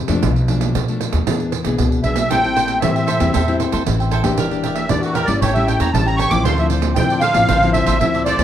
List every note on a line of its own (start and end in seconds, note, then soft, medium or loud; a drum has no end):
0.00 0.21 C3 medium
0.08 0.25 F2 medium
0.08 0.31 F3 medium
0.08 0.31 A3 medium
0.08 0.32 D4 medium
0.08 pandeiro medium
0.23 0.77 B1 loud
0.23 0.73 B2 medium
0.23 pandeiro medium
0.36 pandeiro soft
0.48 0.73 F3 medium
0.48 0.74 A3 soft
0.48 0.74 D4 medium
0.48 pandeiro medium
0.61 pandeiro medium
0.75 1.25 B2 medium
0.75 1.08 B2 medium
0.75 pandeiro medium
0.88 1.23 F3 medium
0.88 1.24 A3 medium
0.88 1.24 D4 medium
0.88 pandeiro soft
1.01 pandeiro medium
1.13 1.25 D#2 medium
1.13 pandeiro medium
1.27 1.60 E2 medium
1.27 1.77 E3 medium
1.27 1.52 B3 medium
1.27 1.52 D4 medium
1.27 1.52 G#4 medium
1.27 pandeiro medium
1.40 pandeiro soft
1.52 pandeiro medium
1.65 1.77 B1 medium
1.65 2.01 B3 medium
1.65 2.01 D4 medium
1.65 2.01 G#4 medium
1.65 pandeiro medium
1.78 2.03 C#2 medium
1.78 2.29 B2 medium
1.78 pandeiro medium
1.92 pandeiro soft
2.03 2.32 B1 medium
2.03 2.22 B3 medium
2.03 2.22 D4 medium
2.03 2.22 G#4 medium
2.03 2.29 E5 medium
2.03 pandeiro medium
2.16 pandeiro medium
2.30 2.85 A1 loud
2.30 2.80 A2 medium
2.30 2.40 G3 medium
2.30 2.40 C4 medium
2.30 2.40 E4 medium
2.30 2.54 A4 medium
2.30 2.55 C5 medium
2.30 2.56 E5 medium
2.30 2.79 G5 loud
2.30 2.56 G5 medium
2.30 pandeiro medium
2.44 2.79 G3 medium
2.44 2.79 C4 medium
2.44 2.79 E4 medium
2.44 pandeiro soft
2.56 2.94 A4 soft
2.56 2.95 C5 medium
2.56 2.95 E5 medium
2.56 2.94 G5 medium
2.56 pandeiro medium
2.68 pandeiro medium
2.81 3.17 A2 medium
2.81 3.32 E3 medium
2.81 3.07 G3 medium
2.81 3.07 C4 medium
2.81 3.08 E4 medium
2.81 3.56 E5 medium
2.81 pandeiro medium
2.95 3.07 C5 soft
2.95 3.07 E5 soft
2.95 3.08 G5 soft
2.95 pandeiro soft
3.07 3.20 A4 medium
3.07 3.20 C5 medium
3.07 3.20 E5 medium
3.07 3.19 G5 medium
3.07 pandeiro medium
3.20 3.32 E2 loud
3.20 3.43 G3 medium
3.20 3.43 C4 medium
3.20 3.43 E4 medium
3.20 3.33 C5 soft
3.20 3.33 E5 soft
3.20 3.33 G5 soft
3.20 pandeiro medium
3.34 3.68 E2 loud
3.34 3.84 A2 medium
3.34 3.59 A4 medium
3.34 3.59 C5 medium
3.34 3.60 E5 medium
3.34 3.60 G5 medium
3.34 pandeiro medium
3.48 3.83 G3 medium
3.48 3.83 C4 medium
3.48 3.83 E4 medium
3.48 pandeiro soft
3.60 3.71 A4 medium
3.60 3.72 C5 medium
3.60 3.72 E5 soft
3.60 3.72 G5 soft
3.60 pandeiro medium
3.72 3.85 E2 loud
3.72 3.82 A4 medium
3.72 3.82 C5 medium
3.72 3.82 E5 medium
3.72 3.83 G5 medium
3.72 pandeiro medium
3.86 4.20 A1 loud
3.86 4.36 E3 medium
3.86 4.11 G3 medium
3.86 4.11 C4 medium
3.86 4.11 E4 medium
3.86 pandeiro medium
4.00 4.11 C5 soft
4.00 4.12 E5 soft
4.00 4.12 G5 soft
4.00 pandeiro soft
4.11 4.24 A4 medium
4.11 4.24 C5 medium
4.11 4.24 E5 medium
4.11 4.22 G5 medium
4.11 pandeiro medium
4.23 4.39 A1 medium
4.23 4.46 A#3 medium
4.23 4.46 D4 medium
4.23 4.47 G4 medium
4.23 4.38 C5 soft
4.23 4.37 E5 soft
4.23 4.36 G5 medium
4.23 pandeiro medium
4.38 4.92 E1 loud
4.38 4.88 E3 medium
4.38 4.63 G4 medium
4.38 4.64 A#4 medium
4.38 4.64 D5 medium
4.38 4.64 E5 medium
4.38 pandeiro medium
4.50 4.86 A#3 medium
4.50 4.86 D4 medium
4.50 4.86 G4 medium
4.50 pandeiro soft
4.64 5.02 G4 medium
4.64 5.03 A#4 medium
4.64 5.03 D5 medium
4.64 5.03 E5 medium
4.64 pandeiro medium
4.75 4.89 E5 medium
4.75 pandeiro medium
4.89 5.24 E2 medium
4.89 5.27 E3 medium
4.89 5.14 A#3 medium
4.89 5.15 D4 medium
4.89 5.15 G4 medium
4.89 5.03 D5 medium
4.89 pandeiro medium
5.02 5.15 F#4 medium
5.02 5.15 D5 soft
5.02 5.16 E5 soft
5.02 pandeiro soft
5.06 5.15 A#4 soft
5.13 5.28 G4 medium
5.13 5.27 A#4 medium
5.13 5.28 A#4 medium
5.13 5.28 E5 medium
5.13 pandeiro medium
5.17 5.27 D5 loud
5.25 5.39 G1 loud
5.25 5.50 G3 medium
5.25 5.51 C#4 medium
5.25 5.40 D5 loud
5.25 5.41 D5 soft
5.25 pandeiro medium
5.29 5.51 E4 medium
5.29 5.42 A#4 soft
5.29 5.41 E5 soft
5.40 5.75 A1 loud
5.40 5.91 A2 medium
5.40 5.66 G4 medium
5.40 5.67 A4 medium
5.40 5.54 C#5 medium
5.40 5.68 C#5 medium
5.40 pandeiro medium
5.45 5.68 G5 medium
5.54 5.91 G3 medium
5.54 5.91 C#4 medium
5.54 5.91 E4 medium
5.54 5.67 E5 medium
5.54 pandeiro soft
5.67 5.78 G4 medium
5.67 5.78 A4 medium
5.67 5.79 C#5 medium
5.67 5.80 G5 medium
5.67 5.79 G5 medium
5.67 pandeiro medium
5.80 5.92 E2 medium
5.80 5.89 G4 medium
5.80 5.89 A4 medium
5.80 5.90 C#5 medium
5.80 5.90 G5 medium
5.80 5.93 A#5 medium
5.80 pandeiro medium
5.94 6.27 A1 loud
5.94 6.44 E3 medium
5.94 6.19 G3 medium
5.94 6.19 C#4 medium
5.94 6.19 E4 medium
5.94 6.07 A5 medium
5.94 pandeiro medium
6.06 6.18 A4 soft
6.06 6.18 C#5 soft
6.06 6.19 G5 soft
6.06 6.20 A#5 loud
6.06 pandeiro soft
6.16 6.31 G4 medium
6.16 6.31 A4 medium
6.16 6.30 C#5 medium
6.16 6.30 G5 medium
6.16 6.31 C#6 medium
6.16 pandeiro medium
6.30 6.46 A1 medium
6.30 6.55 F3 medium
6.30 6.55 C4 medium
6.30 6.55 E4 medium
6.30 6.45 A4 soft
6.30 6.44 C#5 soft
6.30 6.44 G5 soft
6.30 6.44 D6 loud
6.30 pandeiro medium
6.44 6.99 D2 loud
6.44 6.96 D3 medium
6.44 6.69 F4 medium
6.44 6.70 A4 medium
6.44 6.71 C5 medium
6.44 6.72 D5 medium
6.44 6.58 C6 loud
6.44 pandeiro medium
6.58 6.94 F3 medium
6.58 6.95 C4 medium
6.58 6.95 E4 medium
6.58 6.67 E5 medium
6.58 pandeiro soft
6.70 7.09 F4 medium
6.70 7.10 A4 medium
6.70 7.10 C5 medium
6.70 7.10 D5 medium
6.70 pandeiro medium
6.82 pandeiro medium
6.95 7.48 A2 medium
6.95 7.31 D3 medium
6.95 7.22 F3 medium
6.95 7.22 G5 loud
6.95 pandeiro medium
6.99 7.23 C4 medium
6.99 7.23 E4 medium
7.10 7.22 A4 soft
7.10 7.22 C5 soft
7.10 7.23 D5 soft
7.10 pandeiro soft
7.20 7.35 F4 medium
7.20 7.35 A4 medium
7.20 7.34 C5 medium
7.20 7.33 D5 medium
7.20 7.70 F5 loud
7.20 pandeiro medium
7.34 7.47 A1 loud
7.34 7.58 F3 medium
7.34 7.58 C4 medium
7.34 7.58 E4 medium
7.34 7.48 A4 soft
7.34 7.48 C5 soft
7.34 7.47 D5 soft
7.34 pandeiro medium
7.48 7.82 A1 loud
7.48 7.99 D3 medium
7.48 7.73 F4 medium
7.48 7.73 A4 medium
7.48 7.74 C5 medium
7.48 7.75 D5 medium
7.48 pandeiro medium
7.63 7.98 F3 medium
7.63 7.98 C4 medium
7.63 7.98 E4 medium
7.63 pandeiro soft
7.73 7.85 F4 medium
7.73 7.85 A4 medium
7.73 7.86 C5 medium
7.73 7.86 D5 medium
7.73 8.22 E5 medium
7.73 pandeiro medium
7.86 7.99 A1 medium
7.86 7.96 F4 medium
7.86 7.96 A4 medium
7.86 7.97 C5 medium
7.86 7.97 D5 medium
7.86 pandeiro medium
8.01 8.34 D2 medium
8.01 8.44 A2 medium
8.01 8.36 F3 medium
8.01 8.37 C4 medium
8.01 8.37 E4 medium
8.01 pandeiro medium
8.14 8.25 A4 soft
8.14 8.26 C5 soft
8.14 8.26 D5 soft
8.14 pandeiro soft
8.25 8.38 F4 medium
8.25 8.39 A4 medium
8.25 8.38 C5 medium
8.25 8.44 D5 loud
8.25 8.37 D5 medium
8.25 pandeiro medium
8.38 8.44 D2 medium
8.38 8.44 F3 medium
8.38 8.44 C4 medium
8.38 8.44 E4 medium
8.38 8.44 A4 soft
8.38 8.44 C5 soft
8.38 8.44 D5 medium
8.38 pandeiro medium